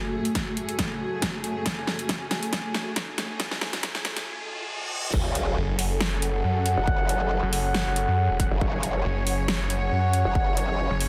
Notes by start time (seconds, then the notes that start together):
Already playing: F#2 C#3 A3 F#4 G#4 G#5, riser
0.25 closed hi-hat
0.35 kick, snare, closed hi-hat
0.57 closed hi-hat
0.69 closed hi-hat
0.79 kick, snare, closed hi-hat
1.22 kick, snare, closed hi-hat
1.44 closed hi-hat
1.66 kick, snare, closed hi-hat
1.87 snare
1.99 closed hi-hat
2.09 kick, snare, closed hi-hat
2.31 snare, closed hi-hat
2.43 closed hi-hat
2.53 kick, snare, closed hi-hat
2.74 snare
2.96 kick, snare, closed hi-hat
3.18 snare, closed hi-hat
3.40 kick, snare, closed hi-hat
3.51 snare
3.61 snare
3.73 snare, closed hi-hat
3.83 kick, snare, closed hi-hat
3.95 snare
4.05 snare, closed hi-hat
4.17 snare, closed hi-hat
4.27 reverse cymbal
5.13 F#1 F#3 C#4 G#4 A4, kick, crash, sub drop
5.35 closed hi-hat
5.57 F#1
5.79 F#4 C#5 F#5, open hi-hat
6.01 snare
6.22 F#4 C#5 F#5, closed hi-hat
6.44 F#2
6.66 closed hi-hat
6.77 F#1
6.87 kick
7.09 closed hi-hat
7.43 F#1
7.53 F#4 C#5 F#5, open hi-hat
7.74 snare
7.86 F#1
7.96 closed hi-hat
8.08 F#2
8.30 E1
8.40 F#4 C#5 F#5, kick, closed hi-hat
8.51 F#1
8.61 F#1 C#5, kick
8.83 closed hi-hat
9.05 F#1
9.27 F#4 C#5 F#5, open hi-hat
9.48 snare
9.70 F#4 C#5 F#5, closed hi-hat
9.92 F#2
10.13 closed hi-hat
10.25 F#1
10.35 kick
10.57 closed hi-hat
10.91 F#1
11.00 open hi-hat